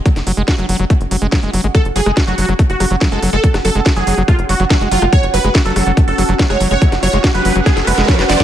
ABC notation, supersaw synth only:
X:1
M:4/4
L:1/16
Q:1/4=142
K:F#m
V:1 name="Supersaw synth"
z16 | A z G2 z F2 z2 F2 z2 A z A- | A z A2 z G2 z ^E z F z F z E z | c z B2 z A2 z2 A2 z2 c z c- |
c z c2 z B2 z G z B z c z d z |]